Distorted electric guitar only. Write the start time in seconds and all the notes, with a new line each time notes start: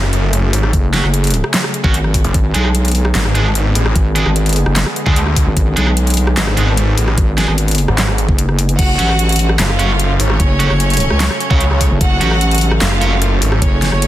0.93 F#3 C#4 F#4
1.84 F#3 C#4 F#4
2.54 G#3 D4 G#4
3.35 G#3 D4 G#4
4.15 G#3 D4 G#4
5.06 G#3 D4 G#4
5.77 G#3 D4 G#4
6.57 G#3 D4 G#4
7.38 G#3 D4 G#4
8.99 F#3 C#4 F#4
9.79 F#3 C#4 F#4
10.60 F#3 C#4 F#4
11.51 F#3 C#4 F#4
12.21 F#3 C#4 F#4
13.01 F#3 C#4 F#4